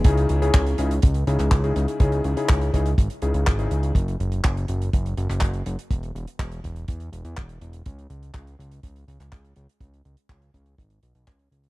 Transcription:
<<
  \new Staff \with { instrumentName = "Electric grand piano" } { \time 4/4 \key cis \minor \tempo 4 = 123 <cis cis' dis' e' gis'>8. <cis cis' dis' e' gis'>8. <cis cis' dis' e' gis'>16 r8. <cis cis' dis' e' gis'>8. <cis cis' dis' e' gis'>8. | <cis cis' dis' e' gis'>8. <cis cis' dis' e' gis'>8. <cis cis' dis' e' gis'>16 r8. <cis cis' dis' e' gis'>8. <cis cis' dis' e' gis'>8. | r1 | r1 |
r1 | r1 | }
  \new Staff \with { instrumentName = "Analog synth bass" } { \clef bass \time 4/4 \key cis \minor cis,8 cis,8 cis,8 cis,8 cis,8 cis,16 cis,16 cis,8 cis,16 r16 | cis,8 cis,16 r16 cis,8 cis,8 gis,,16 r16 cis,16 cis,16 gis,,8 cis,8 | fis,,8 fis,,8 fis,,8 fis,,8 fis,,8 fis,,16 fis,,16 fis,,8 fis,,16 r16 | e,,8 e,,16 r16 e,,8 e,,8 e,8 e,,16 e,16 e,,8 e,,8 |
cis,8 cis,8 cis,8 cis,8 cis,8 cis,16 cis,16 cis,8 cis,16 r16 | cis,8 cis,16 r16 cis,8 cis,8 gis,,8 b,,16 b,,16 cis,8 cis,8 | }
  \new DrumStaff \with { instrumentName = "Drums" } \drummode { \time 4/4 <hh bd>16 hh16 hh16 hh16 <hc hh bd>16 hh16 hh16 hh16 <hh bd>16 hh16 hh16 <hc hh>16 <hc hh bd>16 hh16 hh16 hh16 | <hh bd>16 hh16 hh16 hh16 <hc hh bd>16 hh16 <hh bd>16 hh16 <hh bd>16 hh16 hh16 hh16 <hc hh bd>16 hh16 hh16 hh16 | <hh bd>16 hh16 hh16 hh16 <hc hh bd>16 hh16 hh16 hh16 <hh bd>16 hh16 hh16 <hc hh>16 <hc hh bd>16 hh16 hh16 hh16 | <hh bd>16 hh16 hh16 hh16 <hc hh bd>16 hh16 <hh bd>16 hh16 <hh bd>16 hh16 hh16 hh16 <hc hh bd>16 hh16 hh16 hh16 |
<hh bd>16 hh16 hh16 hh16 <hc hh bd>16 hh16 hh16 hh16 <hh bd>16 hh16 hh16 <hc hh>16 <hc hh bd>16 hh16 hh16 hh16 | <hh bd>16 hh16 hh16 hh16 <hc hh bd>16 hh16 <hh bd>16 hh16 <hh bd>16 hh16 hh16 hh16 <hc hh bd>16 hh16 hh16 hh16 | }
>>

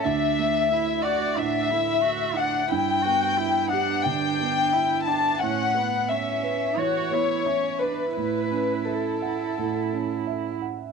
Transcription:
<<
  \new Staff \with { instrumentName = "Violin section" } { \time 4/4 \key d \major \tempo 4 = 88 e''4. d''8 e''4. fis''8 | g''4. fis''8 g''4. a''8 | fis''4 e''4 cis''4. b'8 | b'4 a'2 r4 | }
  \new Staff \with { instrumentName = "Cello" } { \time 4/4 \key d \major d'4 e'8 fis'8 d'8 e'8 fis'8 d'8 | e'8 fis'8 e'8 d'4. e'8 d'8 | cis'8 b8 cis'4 fis'8 e'8 cis'8 d'8 | e'2.~ e'8 r8 | }
  \new Staff \with { instrumentName = "Grand piano" } { \time 4/4 \key d \major d,8 a8 e''8 fis''8 a,8 a8 e''8 fis''8 | g,8 b8 e''8 g'8 d8 b8 e''8 g''8 | a,8 b8 e''8 b'8 e8 b8 e''8 b'8 | a,8 cis'8 e''8 fis''8 a,8 cis'8 e''8 fis''8 | }
>>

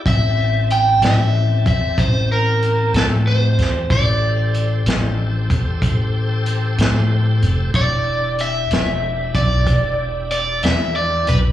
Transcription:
<<
  \new Staff \with { instrumentName = "Overdriven electric guitar" } { \time 12/8 \key a \dorian \tempo 4. = 62 e''4 g''8 e''4 e''8 c''8 ais'4 a'8 c''4 | d''2 r1 | d''4 e''4. d''4. d''8 e''8 d''8 b'8 | }
  \new Staff \with { instrumentName = "Tonewheel organ" } { \time 12/8 \key a \dorian <c' g' a''>1. | <g' a' c''>1. | <d' e' g'>1. | }
  \new Staff \with { instrumentName = "Upright bass" } { \clef bass \time 12/8 \key a \dorian a,,4. a,,4 e,8 a,,4. a,4 e,8 | a,,4. a,,4 e,8 a,,4. a,4 f,,8 | e,,4. e,,4 b,,8 e,,4. e,4 b,,8 | }
  \new DrumStaff \with { instrumentName = "Drums" } \drummode { \time 12/8 <hh bd>4 hh8 <hh sn>4 <hh bd>8 <hh bd>4 hh8 <hh sn>4 <hh sn>8 | <hh bd>4 hh8 <hh sn>4 <hh bd>8 <hh bd>4 hh8 <hh sn>4 hh8 | <hh bd>4 hh8 <hh sn>4 <hh bd>8 <hh bd>4 hh8 <hh sn>4 hh8 | }
>>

